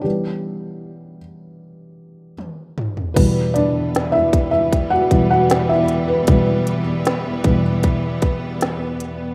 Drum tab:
CC |----------------|x---------------|----------------|
HH |----------------|x-x-x-x-x-x-x-x-|x-x-x-x-x-x-x-x-|
SD |----------------|----o-------o---|----o-------o---|
T1 |------------o---|----------------|----------------|
T2 |--------------o-|----------------|----------------|
FT |---------------o|----------------|----------------|
BD |----------------|o-----o-o-o-----|o-----o-o-o-----|